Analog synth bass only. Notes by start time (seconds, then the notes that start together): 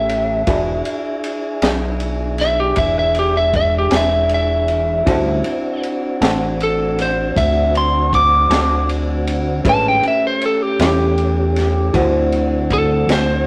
Already playing: A1
0.48 E1
1.62 B1
2.77 E1
3.92 E1
5.07 D2
6.21 A1
7.36 D2
8.50 D2
9.64 A1
10.79 E2
11.94 D2
13.07 D2